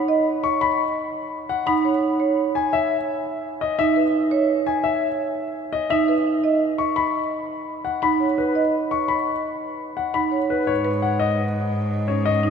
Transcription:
0.08 0.31 D#5 medium
0.44 0.66 C#6 medium
0.61 0.84 B5 medium
1.49 1.72 F#5 medium
1.67 1.90 D#4 medium
1.67 1.90 B5 medium
1.85 2.08 C#5 soft
2.20 2.43 C#5 medium
2.55 2.78 G#5 medium
2.73 2.96 E5 medium
3.61 3.84 D#5 medium
3.79 4.02 D#4 medium
3.79 4.02 E5 medium
3.96 4.19 B4 medium
4.31 4.55 C#5 medium
4.67 4.90 G#5 medium
4.84 5.07 E5 medium
5.73 5.96 D#5 medium
5.90 6.13 D#4 medium
5.90 6.13 E5 medium
6.08 6.31 B4 medium
6.44 6.66 D#5 medium
6.78 7.02 C#6 medium
6.96 7.19 B5 medium
7.85 8.08 F#5 soft
8.02 8.25 D#4 medium
8.02 8.25 B5 medium
8.20 8.43 C#5 soft
8.38 8.61 B4 soft
8.55 8.78 D#5 medium
8.91 9.14 C#6 soft
9.08 9.31 B5 medium
9.97 10.19 F#5 soft
10.14 10.37 D#4 medium
10.14 10.37 B5 medium
10.32 10.55 C#5 soft
10.50 10.73 B4 soft
10.67 12.50 G#2 soft
10.67 10.90 C#5 medium
10.85 11.08 B4 medium
11.02 11.25 F#5 soft
11.20 11.43 D#5 medium
12.08 12.31 C#4 soft
12.08 12.31 C#5 soft
12.26 12.49 D#5 medium
12.43 12.50 D#4 medium

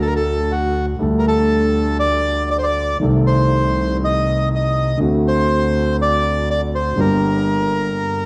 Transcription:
0.00 0.90 D2 medium
0.00 0.90 D2 soft
0.00 0.90 D3 medium
0.00 0.89 F#3 soft
0.00 0.91 D4 soft
0.00 0.91 F#4 medium
0.00 0.08 A4 medium
0.07 0.14 A#4 medium
0.16 0.52 A4 medium
0.52 0.86 F#4 medium
0.99 2.90 D2 soft
0.99 2.91 D2 medium
0.99 2.91 D3 soft
0.99 2.90 G3 soft
0.99 2.90 A3 soft
0.99 2.91 D4 soft
0.99 2.91 A4 medium
1.19 1.25 A#4 medium
1.28 1.97 A4 medium
1.99 2.49 D5 medium
2.51 2.57 D5 medium
2.59 2.65 C5 medium
2.64 2.97 D5 medium
3.00 4.90 C2 medium
3.00 4.91 C2 medium
3.00 4.91 C3 medium
3.00 4.89 D#3 soft
3.00 4.90 A3 soft
3.00 4.91 C4 soft
3.04 4.91 A4 soft
3.27 3.97 C5 medium
4.04 4.48 D#5 medium
4.55 4.99 D#5 medium
4.97 6.89 D2 medium
4.97 6.88 D3 medium
4.97 6.88 A3 soft
4.97 6.89 C4 soft
4.97 6.89 F#4 soft
5.28 5.97 C5 medium
6.02 6.49 D5 medium
6.50 6.61 D5 medium
6.75 7.00 C5 medium
6.95 8.26 G1 medium
6.95 7.93 G1 medium
6.95 8.26 G2 medium
6.95 8.26 D3 soft
6.95 8.26 G3 soft
6.95 8.26 A#3 soft
6.95 8.26 G4 soft
7.00 8.26 A#4 medium

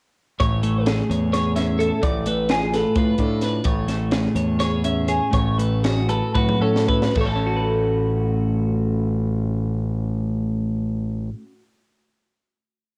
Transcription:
0.40 1.00 A1 medium
0.40 2.01 A2 medium
0.40 0.87 C#5 medium
0.40 kick loud
0.40 closed hi-hat medium
0.63 2.26 A3 medium
0.63 closed hi-hat medium
0.86 1.32 G#4 medium
0.86 snare loud
0.86 closed hi-hat medium
1.10 1.90 E2 loud
1.10 1.80 C#5 medium
1.10 closed hi-hat medium
1.33 2.00 G#4 medium
1.33 1.55 C#5 medium
1.33 snare soft
1.33 closed hi-hat medium
1.56 2.00 C#4 medium
1.56 1.80 E5 medium
1.56 snare soft
1.56 closed hi-hat medium
1.79 2.03 A4 medium
1.79 2.01 E5 medium
1.79 closed hi-hat medium
2.02 2.83 A1 medium
2.02 3.64 A2 medium
2.02 2.26 D5 medium
2.02 kick loud
2.02 closed hi-hat medium
2.26 3.88 A3 medium
2.26 2.50 B4 medium
2.26 closed hi-hat medium
2.49 2.97 F4 medium
2.49 2.74 G#4 medium
2.49 snare medium
2.49 closed hi-hat medium
2.74 2.96 A4 medium
2.74 3.42 B4 medium
2.74 snare soft
2.74 closed hi-hat medium
2.96 3.16 A2 medium
2.96 3.64 F4 medium
2.96 3.20 B4 medium
2.96 kick loud
2.96 closed hi-hat medium
3.18 3.59 A2 medium
3.18 3.64 D4 medium
3.18 3.43 A4 medium
3.18 kick medium
3.18 closed hi-hat medium
3.41 3.63 B4 medium
3.41 3.65 B4 medium
3.41 snare soft
3.41 closed hi-hat medium
3.64 4.26 A1 medium
3.64 5.31 A2 medium
3.64 4.12 C#5 medium
3.64 kick loud
3.64 closed hi-hat medium
3.88 5.58 A3 medium
3.88 snare soft
3.88 closed hi-hat medium
4.11 4.58 G#4 soft
4.11 snare loud
4.11 closed hi-hat medium
4.35 5.19 E2 medium
4.35 5.08 C#5 medium
4.35 closed hi-hat medium
4.59 5.30 G#4 medium
4.59 4.84 C#5 medium
4.59 snare soft
4.59 closed hi-hat medium
4.84 6.12 C#4 medium
4.84 5.09 E5 medium
4.84 closed hi-hat medium
5.08 5.33 G#4 medium
5.08 6.09 C#5 medium
5.08 closed hi-hat medium
5.31 6.21 A1 medium
5.31 7.15 A2 medium
5.31 5.58 C#5 medium
5.31 kick loud
5.31 closed hi-hat medium
5.58 7.12 A3 medium
5.58 5.83 B4 medium
5.58 closed hi-hat medium
5.83 6.35 F#4 soft
5.83 6.09 G#4 medium
5.83 snare loud
5.83 closed hi-hat medium
6.09 6.34 A4 medium
6.09 6.88 B4 medium
6.09 closed hi-hat medium
6.34 6.58 A2 medium
6.34 7.13 F#4 medium
6.34 6.61 B4 medium
6.34 kick loud
6.34 high tom medium
6.49 high tom medium
6.60 7.07 A2 medium
6.60 7.13 C#4 medium
6.60 6.88 A4 medium
6.76 snare medium
6.88 7.03 A4 medium
6.88 7.16 B4 medium
6.88 kick medium
7.02 7.16 B4 soft
7.02 snare medium
7.15 11.29 A1 medium
7.15 11.33 A2 medium
7.15 11.30 A4 medium
7.15 kick medium
7.15 crash medium
7.21 7.26 C#5 medium
7.26 11.43 A3 medium
7.26 7.29 E5 medium
7.26 11.42 A5 medium
7.36 11.52 C#4 medium
7.46 11.63 F#4 medium
7.56 11.73 B4 soft

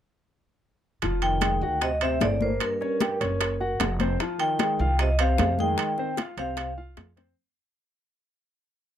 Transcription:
1.02 1.58 F1 medium
1.02 1.35 F3 medium
1.02 1.35 F4 medium
1.02 high bongo medium
1.02 high conga soft
1.02 high timbale medium
1.22 1.78 D#3 medium
1.22 1.84 G5 loud
1.22 high conga soft
1.22 high timbale medium
1.41 1.59 G#3 medium
1.41 1.59 G#4 medium
1.41 high bongo medium
1.41 high conga medium
1.41 high timbale medium
1.41 low timbale medium
1.61 2.17 D2 medium
1.61 1.95 F#4 medium
1.61 1.95 F#5 medium
1.61 high conga soft
1.81 1.91 C3 medium
1.81 1.91 D#5 medium
1.81 high bongo medium
1.81 high conga soft
1.81 high timbale medium
2.01 2.20 C3 medium
2.01 2.35 C4 medium
2.01 2.35 C5 medium
2.01 2.22 E5 medium
2.01 high conga soft
2.01 high timbale medium
2.21 2.56 G1 medium
2.21 2.40 A2 medium
2.21 2.40 D5 medium
2.21 high bongo medium
2.21 low bongo medium
2.21 high conga medium
2.21 high timbale medium
2.21 low timbale medium
2.41 2.50 A2 medium
2.41 2.74 A#3 medium
2.41 2.74 A#4 medium
2.41 2.51 C5 medium
2.41 high conga medium
2.60 3.37 G2 medium
2.60 3.77 A#4 medium
2.60 high bongo medium
2.60 high conga soft
2.60 high timbale medium
2.81 2.97 C#4 medium
2.81 2.98 C#5 medium
2.81 high bongo soft
2.81 high conga soft
3.00 3.17 G4 medium
3.00 3.18 G5 medium
3.00 high bongo medium
3.00 high conga medium
3.00 high timbale medium
3.00 low timbale medium
3.20 3.76 F#1 medium
3.20 3.53 C#4 medium
3.20 3.53 C#5 medium
3.20 high bongo soft
3.20 high conga soft
3.20 high timbale medium
3.40 high bongo medium
3.40 high conga soft
3.40 high timbale medium
3.60 3.93 F#4 medium
3.60 3.93 F#5 medium
3.60 high conga soft
3.80 4.15 F1 medium
3.80 high bongo medium
3.80 low bongo medium
3.80 high conga medium
3.80 high timbale medium
3.80 low timbale medium
4.00 4.17 C4 medium
4.00 4.17 C5 medium
4.00 high bongo soft
4.00 high conga medium
4.00 high timbale medium
4.20 4.53 F3 medium
4.20 4.54 F4 medium
4.20 high bongo medium
4.20 high conga soft
4.20 high timbale medium
4.39 4.96 D#3 medium
4.39 4.95 G5 loud
4.39 high conga soft
4.39 high timbale medium
4.59 4.76 G#3 medium
4.59 4.77 G#4 medium
4.59 high bongo medium
4.59 high conga medium
4.59 high timbale medium
4.59 low timbale medium
4.79 5.35 C2 loud
4.79 5.13 F4 medium
4.79 5.13 F5 medium
4.79 high conga soft
4.99 5.09 C3 medium
4.99 5.09 D#5 medium
4.99 high bongo medium
4.99 high conga soft
4.99 high timbale medium
5.19 5.57 C3 medium
5.19 5.52 C4 medium
5.19 5.52 C5 medium
5.19 5.56 F5 medium
5.19 high conga soft
5.19 high timbale medium
5.38 5.74 F2 medium
5.38 high bongo medium
5.38 low bongo medium
5.38 high conga medium
5.38 high timbale medium
5.38 low timbale medium
5.59 6.15 D#3 medium
5.59 5.92 G#3 medium
5.59 5.92 G#4 medium
5.59 6.15 G5 medium
5.59 high conga medium
5.78 high bongo medium
5.78 high conga soft
5.78 high timbale medium
5.98 6.15 C4 medium
5.98 6.15 C5 medium
5.98 high bongo soft
5.98 high conga soft
6.17 6.35 F4 medium
6.17 6.35 F5 medium
6.17 high bongo medium
6.17 high conga medium
6.17 high timbale medium
6.17 low timbale medium
6.37 6.93 C2 medium
6.37 6.75 C3 medium
6.37 6.71 C4 medium
6.37 6.71 C5 medium
6.37 6.76 F5 medium
6.37 high bongo soft
6.37 high conga soft
6.37 high timbale medium
6.57 high bongo medium
6.57 high conga soft
6.57 high timbale medium
6.77 7.10 F4 medium
6.77 7.10 F5 medium
6.77 high conga soft
6.97 7.33 F2 medium
6.97 high bongo medium
6.97 high conga medium
6.97 high timbale medium
6.97 low timbale medium
7.16 7.33 C4 medium
7.16 7.33 C5 medium
7.16 low bongo medium
7.16 high conga medium
7.16 high timbale medium

